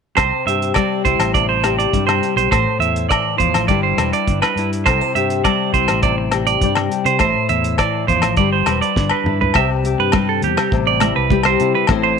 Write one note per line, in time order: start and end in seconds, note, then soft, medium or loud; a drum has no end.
0.17 0.31 C2 medium
0.17 1.34 C3 medium
0.17 0.45 C5 medium
0.17 1.94 C5 medium
0.17 kick medium
0.17 cross-stick medium
0.17 closed hi-hat soft
0.17 low agogo medium
0.46 0.72 G2 medium
0.46 1.63 G4 soft
0.46 0.75 E5 medium
0.46 closed hi-hat soft
0.62 closed hi-hat soft
0.74 1.92 G3 medium
0.74 1.03 D5 medium
0.74 kick medium
0.74 cross-stick medium
0.74 closed hi-hat soft
0.74 low agogo medium
1.05 1.19 C2 medium
1.05 2.81 E4 medium
1.05 1.33 C5 medium
1.05 kick medium
1.05 closed hi-hat soft
1.19 1.85 A1 medium
1.19 cross-stick medium
1.19 closed hi-hat soft
1.19 low agogo medium
1.34 2.48 C3 medium
1.34 1.48 D5 medium
1.34 kick medium
1.34 closed hi-hat soft
1.49 1.77 C5 medium
1.64 2.23 G4 medium
1.64 cross-stick medium
1.64 closed hi-hat soft
1.64 low agogo soft
1.78 2.06 D5 medium
1.78 closed hi-hat soft
1.93 2.19 G2 medium
1.93 2.52 G3 medium
1.93 kick medium
1.93 closed hi-hat soft
2.07 2.35 C5 medium
2.07 cross-stick medium
2.07 low agogo medium
2.23 2.49 G4 soft
2.23 closed hi-hat soft
2.36 2.49 B1 medium
2.36 2.50 C5 medium
2.36 closed hi-hat soft
2.51 2.65 A1 medium
2.51 3.69 A2 medium
2.51 2.79 C5 medium
2.51 3.66 C5 medium
2.51 kick medium
2.51 cross-stick medium
2.51 closed hi-hat soft
2.51 low agogo medium
2.79 3.06 E2 medium
2.79 3.70 E4 medium
2.79 3.08 E5 medium
2.79 closed hi-hat soft
2.96 closed hi-hat soft
3.09 3.39 E3 medium
3.09 3.37 D5 medium
3.09 kick medium
3.09 cross-stick medium
3.09 closed hi-hat soft
3.09 low agogo medium
3.38 3.53 E2 medium
3.38 3.69 F3 medium
3.38 3.67 C5 medium
3.38 kick medium
3.38 closed hi-hat soft
3.54 3.67 A1 medium
3.54 cross-stick medium
3.54 closed hi-hat soft
3.54 low agogo medium
3.68 3.95 G1 medium
3.68 5.45 G3 medium
3.68 4.28 D4 soft
3.68 4.58 E4 soft
3.68 3.98 B4 medium
3.68 3.83 D5 medium
3.68 kick medium
3.68 closed hi-hat soft
3.83 4.11 C5 medium
3.97 4.11 E1 medium
3.97 4.83 B4 medium
3.97 cross-stick medium
3.97 closed hi-hat soft
3.97 low agogo soft
4.13 4.41 D5 medium
4.13 closed hi-hat soft
4.27 4.41 G1 medium
4.27 4.83 D4 medium
4.27 kick medium
4.27 closed hi-hat soft
4.42 4.70 B4 medium
4.42 cross-stick medium
4.42 low agogo medium
4.56 4.89 G2 medium
4.56 5.16 E4 medium
4.56 closed hi-hat soft
4.73 closed hi-hat soft
4.86 5.00 C2 medium
4.86 6.01 C3 medium
4.86 5.01 A4 medium
4.86 5.14 C5 medium
4.86 kick medium
4.86 cross-stick medium
4.86 closed hi-hat soft
4.86 low agogo medium
5.01 6.62 C5 soft
5.15 5.41 G2 medium
5.15 6.32 G4 soft
5.15 5.43 E5 medium
5.15 closed hi-hat soft
5.30 closed hi-hat soft
5.44 6.62 G3 medium
5.44 5.72 D5 medium
5.44 kick medium
5.44 cross-stick medium
5.44 closed hi-hat soft
5.44 low agogo medium
5.73 5.87 C2 medium
5.73 7.51 E4 medium
5.73 6.02 C5 medium
5.73 kick medium
5.73 closed hi-hat soft
5.88 6.55 A1 medium
5.88 cross-stick medium
5.88 closed hi-hat soft
5.88 low agogo medium
6.02 7.16 C3 medium
6.02 6.17 D5 medium
6.02 kick medium
6.02 closed hi-hat soft
6.18 muted clean electric guitar stroke medium
6.31 6.91 G4 soft
6.31 cross-stick medium
6.31 closed hi-hat soft
6.31 low agogo medium
6.47 6.75 D5 medium
6.47 closed hi-hat soft
6.61 6.87 G2 medium
6.61 7.21 G3 medium
6.61 7.18 D5 medium
6.61 kick medium
6.61 closed hi-hat soft
6.75 muted clean electric guitar stroke medium
6.75 cross-stick medium
6.75 low agogo medium
6.92 7.17 G4 soft
6.92 closed hi-hat soft
7.05 7.18 C3 medium
7.05 7.19 C5 medium
7.05 closed hi-hat soft
7.19 7.33 A1 medium
7.19 8.37 A2 medium
7.19 7.48 C5 medium
7.19 8.34 C5 medium
7.19 kick medium
7.19 cross-stick medium
7.19 closed hi-hat soft
7.19 low agogo medium
7.49 7.76 E2 medium
7.49 9.26 E4 medium
7.49 7.77 E5 medium
7.49 closed hi-hat soft
7.64 closed hi-hat soft
7.78 8.08 E3 medium
7.78 8.07 D5 medium
7.78 kick medium
7.78 cross-stick medium
7.78 closed hi-hat soft
7.78 low agogo medium
8.08 8.21 E2 medium
8.08 8.38 F3 medium
8.08 8.36 C5 medium
8.08 kick medium
8.08 closed hi-hat soft
8.21 8.35 A1 medium
8.21 cross-stick medium
8.21 closed hi-hat soft
8.21 low agogo medium
8.37 8.64 G1 medium
8.37 10.14 G3 medium
8.37 8.68 B4 medium
8.37 8.52 D5 medium
8.37 kick medium
8.37 closed hi-hat soft
8.52 8.80 C5 medium
8.66 8.80 E1 medium
8.66 9.52 B4 medium
8.66 cross-stick medium
8.66 closed hi-hat soft
8.66 low agogo medium
8.82 9.09 D5 medium
8.82 closed hi-hat soft
8.96 9.10 G1 medium
8.96 9.52 D4 medium
8.96 kick medium
8.96 snare soft
9.10 9.39 B4 medium
9.10 low agogo medium
9.24 9.51 G2 medium
9.24 9.56 E4 soft
9.24 mid tom medium
9.41 9.54 B4 medium
9.41 floor tom medium
9.54 9.94 C2 medium
9.54 10.71 C3 medium
9.54 9.85 G4 medium
9.54 9.69 E5 medium
9.54 muted nylon-string guitar stroke medium
9.54 kick medium
9.54 cross-stick medium
9.54 muted conga soft
9.54 low agogo medium
9.84 11.30 G4 medium
9.84 closed hi-hat soft
9.84 muted conga soft
9.99 10.44 G2 medium
9.99 10.27 B4 medium
10.12 11.29 G3 medium
10.12 kick medium
10.12 cross-stick medium
10.12 high conga loud
10.12 low agogo medium
10.29 10.42 A4 medium
10.42 10.56 E2 medium
10.42 10.71 G4 medium
10.42 closed hi-hat medium
10.57 cross-stick medium
10.57 low agogo medium
10.72 11.11 A1 medium
10.72 11.86 C3 medium
10.72 kick medium
10.72 muted conga soft
10.87 11.15 D5 medium
11.00 11.61 E4 medium
11.00 cross-stick medium
11.00 closed hi-hat soft
11.00 high conga medium
11.00 low agogo medium
11.16 11.55 C2 medium
11.16 11.44 B4 medium
11.30 11.89 G3 medium
11.30 11.86 G4 medium
11.30 kick medium
11.30 high conga medium
11.43 11.73 C5 medium
11.43 cross-stick medium
11.43 low agogo medium
11.60 11.73 C3 medium
11.60 11.89 E4 medium
11.60 closed hi-hat soft
11.60 muted conga soft
11.75 11.88 B4 medium
11.87 12.20 A1 medium
11.87 12.20 A2 medium
11.87 12.20 C4 medium
11.87 12.20 E4 medium
11.87 muted clean electric guitar stroke medium
11.87 kick medium
11.87 cross-stick medium
11.87 low agogo medium
11.91 12.20 C5 medium
11.91 muted conga soft
12.03 12.20 C5 medium